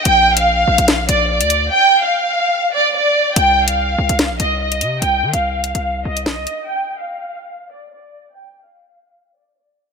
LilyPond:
<<
  \new Staff \with { instrumentName = "Violin section" } { \time 4/4 \key c \minor \tempo 4 = 145 g''8. f''4.~ f''16 d''8 d''4 | g''8. f''4.~ f''16 d''8 d''4 | g''8. f''4.~ f''16 ees''8 ees''4 | g''8. f''4.~ f''16 ees''8 ees''4 |
g''8. f''4.~ f''16 d''8 d''4 | g''8. f''4.~ f''16 d''8 d''4 | }
  \new Staff \with { instrumentName = "808-style bass" } { \clef bass \time 4/4 \key c \minor bes,,4. bes,,16 bes,,8. bes,,8. d,8. | r1 | c,4. c,16 c,8 bes,,16 c,4 c8 | c,8 ees16 c,4 c,8. c,8 bes,,16 c,16 r8 |
r1 | r1 | }
  \new DrumStaff \with { instrumentName = "Drums" } \drummode { \time 4/4 hh8. hh16 r8. hh16 <hh sn>8 hh8 r16 hh16 hh8 | r4 r4 r4 r4 | hh8. hh16 r8. hh16 <hh sn>8 hh8 r16 hh16 hh8 | hh8. hh16 r8 hh16 hh16 r8. hh16 sn8 hh8 |
r4 r4 r4 r4 | r4 r4 r4 r4 | }
>>